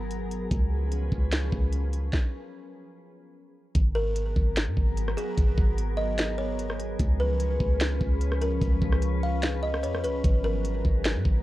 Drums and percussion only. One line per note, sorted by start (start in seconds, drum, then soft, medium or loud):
0.11 closed hi-hat medium
0.31 closed hi-hat medium
0.51 kick loud
0.51 closed hi-hat medium
0.92 closed hi-hat medium
1.12 kick medium
1.32 snare loud
1.32 closed hi-hat medium
1.52 kick loud
1.73 closed hi-hat medium
1.93 closed hi-hat medium
2.13 kick loud
2.13 snare medium
3.75 kick loud
3.75 closed hi-hat medium
4.16 closed hi-hat medium
4.36 kick medium
4.56 snare loud
4.56 closed hi-hat medium
4.77 kick loud
4.97 closed hi-hat medium
5.08 cross-stick medium
5.18 closed hi-hat medium
5.37 kick loud
5.37 closed hi-hat medium
5.58 kick loud
5.78 closed hi-hat medium
6.18 snare loud
6.18 closed hi-hat medium
6.59 closed hi-hat medium
6.70 cross-stick medium
6.80 closed hi-hat medium
6.99 kick loud
6.99 closed hi-hat medium
7.40 closed hi-hat medium
7.60 kick medium
7.81 snare loud
7.81 closed hi-hat medium
8.01 kick loud
8.21 closed hi-hat medium
8.32 cross-stick medium
8.42 closed hi-hat medium
8.62 kick loud
8.62 closed hi-hat medium
8.82 kick loud
8.93 cross-stick medium
9.02 closed hi-hat medium
9.43 snare loud
9.43 closed hi-hat medium
9.74 cross-stick loud
9.83 closed hi-hat medium
9.94 cross-stick medium
10.04 closed hi-hat medium
10.24 kick loud
10.24 closed hi-hat medium
10.65 closed hi-hat medium
10.85 kick medium
11.05 snare loud
11.05 closed hi-hat medium
11.25 kick loud